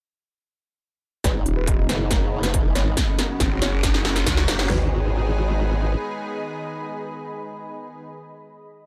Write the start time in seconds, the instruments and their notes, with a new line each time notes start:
1.24 wobble bass G#1, analog synth pad B2 D#3 G#3 D#4, ambient pad G#4, grand piano B4, kick, snare, closed hi-hat, riser
1.35 grand piano D#4
1.46 wobble bass D#1, grand piano D#4, ambient pad D#5, closed hi-hat
1.57 grand piano B4
1.67 grand piano D#4, ambient pad B5, kick, closed hi-hat
1.78 grand piano D#4
1.89 wobble bass F#1, grand piano B4, snare, closed hi-hat
2.00 grand piano D#4
2.11 grand piano A#4, kick, snare, closed hi-hat
2.22 grand piano D#4
2.32 grand piano D#4
2.43 grand piano B4, snare, closed hi-hat
2.49 wobble bass F1
2.54 grand piano D#4, kick, closed hi-hat
2.65 grand piano D#4
2.75 wobble bass G#1, grand piano C#5, snare, closed hi-hat
2.86 grand piano D#4
2.97 analog synth pad C#3 F#3 A#3 F#4, ambient pad F#4, kick, snare, closed hi-hat
3.08 grand piano C#4
3.19 grand piano A#4, snare, closed hi-hat
3.23 ambient pad C#5
3.29 grand piano C#4
3.38 wobble bass G#1, grand piano C#4, ambient pad A#5, kick, snare, closed hi-hat
3.51 grand piano C#4
3.62 wobble bass F#1, grand piano C#5, snare, closed hi-hat
3.73 grand piano C#4
3.83 grand piano C#4, kick, snare, closed hi-hat
3.94 snare
4.05 grand piano C#4, snare
4.16 grand piano C#4, snare, closed hi-hat
4.26 wobble bass C#2, grand piano C#4, kick, snare, closed hi-hat
4.37 snare
4.48 wobble bass F#1, grand piano C#4, snare, closed hi-hat
4.59 grand piano C#4, snare
4.70 wobble bass G#1, analog synth pad D#3 G#3 B3 G#4, ambient pad G#4, grand piano B4, snare, floor tom
4.76 ambient pad D#5
4.83 ambient pad B5